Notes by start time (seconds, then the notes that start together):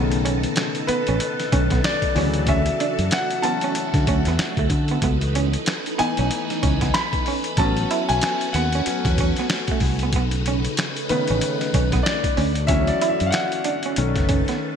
Already playing: B1 B2 C#3 D#3 A3 B3 D#4 A4
0.12 closed hi-hat
0.25 C#4, closed hi-hat
0.43 closed hi-hat
0.56 finger snap, muted clean electric guitar stroke, snare, closed hi-hat
0.75 closed hi-hat
0.87 B3 B4, muted fingered electric bass stroke, closed hi-hat
1.07 A1 C#4, closed hi-hat
1.20 muted clean electric guitar stroke, closed hi-hat
1.40 snare, closed hi-hat
1.52 B1 D#3 A3 C#4, kick, closed hi-hat
1.70 B3, kick, snare, closed hi-hat
1.84 D5, finger snap, snare, closed hi-hat
2.02 kick, closed hi-hat
2.15 D2 C#3 E3 F#3 A3 C#4 F#4, open hi-hat
2.34 closed hi-hat
2.47 C#4 E5, kick, closed hi-hat
2.66 closed hi-hat
2.80 D4, closed hi-hat
2.99 F#2, closed hi-hat
3.11 F#5, finger snap, muted clean electric guitar stroke, snare, closed hi-hat
3.30 closed hi-hat
3.42 E3 F#3 B3 C#4 A5, closed hi-hat
3.61 C#4, closed hi-hat
3.75 muted clean electric guitar stroke, closed hi-hat
3.94 D3, kick, snare, closed hi-hat
4.07 D2 C#4, kick, closed hi-hat
4.25 E2 B3, snare, closed hi-hat
4.39 finger snap, snare, closed hi-hat
4.57 D2 A3, kick, closed hi-hat
4.70 D3, muted clean electric guitar stroke, kick, closed hi-hat
4.88 B3, closed hi-hat
5.02 C#2 E3 B3 D#4 B4, kick, closed hi-hat
5.21 closed hi-hat
5.35 C#4, closed hi-hat
5.53 closed hi-hat
5.66 finger snap, muted clean electric guitar stroke, snare, closed hi-hat
5.86 closed hi-hat
5.98 E3 B3 D#4 G#5, muted fingered electric bass stroke, closed hi-hat
6.17 B1 C#4, closed hi-hat
6.31 muted clean electric guitar stroke, closed hi-hat
6.50 snare, closed hi-hat
6.63 C#2 C#4, kick, closed hi-hat
6.81 B3, kick, snare, closed hi-hat
6.94 B5, finger snap, snare, closed hi-hat
7.13 kick, closed hi-hat
7.26 C#4, open hi-hat
7.44 closed hi-hat
7.57 A1 F#3 A3 B3 C#4 F#4 A5, kick, closed hi-hat
7.77 closed hi-hat
7.91 E4, closed hi-hat
8.09 B1 G#5, closed hi-hat
8.22 finger snap, muted clean electric guitar stroke, snare, closed hi-hat
8.41 closed hi-hat
8.53 D#2 B3 F#5, closed hi-hat
8.72 C#4, closed hi-hat
8.86 F#3 B3 C#4, muted fingered electric bass stroke, muted clean electric guitar stroke, closed hi-hat
9.05 E2, kick, snare, closed hi-hat
9.18 C#4, kick, closed hi-hat
9.36 B3, snare, closed hi-hat
9.50 finger snap, snare, closed hi-hat
9.68 A3, kick, closed hi-hat
9.80 C2, kick, open hi-hat
9.85 muted clean electric guitar stroke
9.99 B3, closed hi-hat
10.13 B1 C#3 B3 D#4 B4, kick, closed hi-hat
10.31 closed hi-hat
10.46 C#4, closed hi-hat
10.65 closed hi-hat
10.77 finger snap, muted clean electric guitar stroke, snare, closed hi-hat
10.96 closed hi-hat
11.09 C#3 D#3 A3 B3 B4, muted fingered electric bass stroke, closed hi-hat
11.27 A1 C#4, closed hi-hat
11.41 muted clean electric guitar stroke, closed hi-hat
11.61 snare, closed hi-hat
11.74 B1 C#4, kick, closed hi-hat
11.92 B3, kick, snare, closed hi-hat
12.03 D5, snare, closed hi-hat
12.07 finger snap
12.24 kick, closed hi-hat
12.36 D2 D3 C#4 F#4, open hi-hat
12.55 closed hi-hat
12.67 E3 F#3 C#4 E5, kick, closed hi-hat
12.87 D5, closed hi-hat
13.01 E4, closed hi-hat
13.09 E5
13.20 F#2, closed hi-hat
13.26 F5
13.31 F#5, muted clean electric guitar stroke, snare, closed hi-hat
13.35 finger snap
13.52 closed hi-hat
13.64 D4, closed hi-hat
13.83 C#4, closed hi-hat
13.96 B1 D#3 A3 B3 C#4 A4, muted clean electric guitar stroke, closed hi-hat
14.16 F#1, kick, snare, closed hi-hat
14.29 C#4, kick, closed hi-hat
14.48 B3, snare, closed hi-hat